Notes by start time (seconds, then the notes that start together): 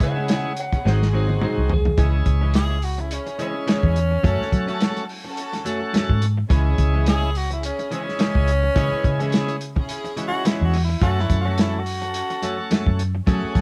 Already playing: G#3 C#4 E4 G#4
0.00 C#3 C#5 F#5, muted clean electric guitar stroke, kick, snare, closed hi-hat
0.16 G#3 C#4 E4 G#4
0.28 C#5 F#5, muted clean electric guitar stroke, snare, closed hi-hat
0.45 muted clean electric guitar stroke
0.57 C#5 F#5, closed hi-hat
0.72 C#4 E4 G#4, muted clean electric guitar stroke, kick, closed hi-hat
0.84 G#1 G#2 F#3 G#3 C4 D#4 F#4 G#4, snare
0.88 C5
1.01 muted clean electric guitar stroke, snare
1.12 G#2 F#3 G#3 C4 D#4 F#4 G#4
1.17 C5
1.29 muted clean electric guitar stroke, high tom
1.42 G#2 F#3 C4 D#4 G#4 C5, mid tom
1.58 C2
1.70 muted clean electric guitar stroke, floor tom
1.74 G#4
1.85 muted clean electric guitar stroke, floor tom
1.97 C#2 C#3 E3 G#3 C#4 E4 G#4, kick, closed hi-hat
2.26 C#2, muted clean electric guitar stroke, kick, closed hi-hat
2.41 E3 G#3 C#4 E4 G#4
2.54 G#4, muted clean electric guitar stroke, snare, closed hi-hat
2.70 muted clean electric guitar stroke
2.82 F#4, open hi-hat
2.98 C#4 E4 G#4, muted clean electric guitar stroke, closed hi-hat
3.11 C#4, closed hi-hat
3.26 muted clean electric guitar stroke, closed hi-hat
3.38 C#3 E3 G#3 C#4 E4 G#4, closed hi-hat
3.55 muted clean electric guitar stroke
3.67 C#3 E3 G#3 C#4, snare, closed hi-hat
3.83 E2, kick
3.95 muted clean electric guitar stroke, closed hi-hat
4.11 muted clean electric guitar stroke
4.23 F#2 F#3 A3 C#4 F#4 A4, kick, closed hi-hat
4.41 muted fingered electric bass stroke, snare
4.52 F#3, muted clean electric guitar stroke, kick, closed hi-hat
4.67 F#3 A3 C#4 F#4 A4, closed hi-hat
4.80 muted clean electric guitar stroke, snare, closed hi-hat
4.96 muted clean electric guitar stroke, closed hi-hat
5.09 open hi-hat
5.24 C#4 F#4 A4, muted clean electric guitar stroke
5.37 closed hi-hat
5.53 muted clean electric guitar stroke, snare, closed hi-hat
5.65 F#2 F#3 A3 C#4 F#4 A4, closed hi-hat
5.81 muted clean electric guitar stroke
5.93 F#2 F#3 A3 C#4, snare, closed hi-hat
6.09 G#2, kick
6.22 muted clean electric guitar stroke, closed hi-hat
6.37 muted clean electric guitar stroke
6.49 C#2 C#3 E3 G#3 C#4 E4 G#4, kick, closed hi-hat
6.78 C#2, muted clean electric guitar stroke, kick, closed hi-hat
6.94 E3 G#3 C#4 E4 G#4
7.06 G#4, muted clean electric guitar stroke, snare, closed hi-hat
7.23 muted clean electric guitar stroke
7.35 F#4, open hi-hat
7.50 C#4 E4 G#4, muted clean electric guitar stroke, closed hi-hat
7.63 C#4, closed hi-hat
7.79 muted clean electric guitar stroke, closed hi-hat
7.91 C#3 E3 G#3 C#4 E4 G#4, closed hi-hat
8.07 muted clean electric guitar stroke, snare
8.19 C#3 E3 G#3 C#4, snare, closed hi-hat
8.35 C#2, kick
8.48 muted clean electric guitar stroke, closed hi-hat
8.63 muted clean electric guitar stroke
8.75 C#3 E3 G#3 C#4 E4 G#4 B4, kick, closed hi-hat
8.92 muted fingered electric bass stroke
9.04 C#3, muted clean electric guitar stroke, kick, closed hi-hat
9.19 E3 G#3 C#4 E4 G#4, closed hi-hat
9.32 muted clean electric guitar stroke, snare, closed hi-hat
9.48 muted clean electric guitar stroke, closed hi-hat
9.61 closed hi-hat
9.75 C#4 E4 G#4, muted clean electric guitar stroke, kick
9.89 closed hi-hat
10.04 muted clean electric guitar stroke, closed hi-hat
10.17 C#3 E3 G#3 C#4 E4 F#4, closed hi-hat
10.28 F#4
10.33 muted clean electric guitar stroke
10.45 C#3 E3 G#3 C#4 E4, snare, closed hi-hat
10.61 E2 F#4
10.73 muted clean electric guitar stroke, snare, open hi-hat
10.84 E4
10.89 muted clean electric guitar stroke
11.00 F#2 F#3 A3 C#4 F#4 A4, kick, closed hi-hat
11.19 E4, snare
11.30 F#2, muted clean electric guitar stroke, kick, closed hi-hat
11.41 C#4 F#4
11.45 F#3 A3 C#4 F#4 A4
11.58 E4, muted clean electric guitar stroke, snare, closed hi-hat
11.74 muted clean electric guitar stroke
11.79 F#4
11.86 open hi-hat
12.01 C#4 F#4 A4, muted clean electric guitar stroke, closed hi-hat
12.14 closed hi-hat
12.30 muted clean electric guitar stroke, closed hi-hat
12.42 F#2 F#3 A3 C#4 F#4 A4, closed hi-hat
12.59 muted clean electric guitar stroke
12.71 F#2 F#3 A3 C#4, snare, closed hi-hat
12.86 F#2, kick
12.99 muted clean electric guitar stroke, closed hi-hat
13.15 muted clean electric guitar stroke
13.26 F#2 F#3 A3 C#4 F#4 G#4 A4, kick, closed hi-hat
13.43 muted fingered electric bass stroke
13.55 F#3, muted clean electric guitar stroke, kick, snare, closed hi-hat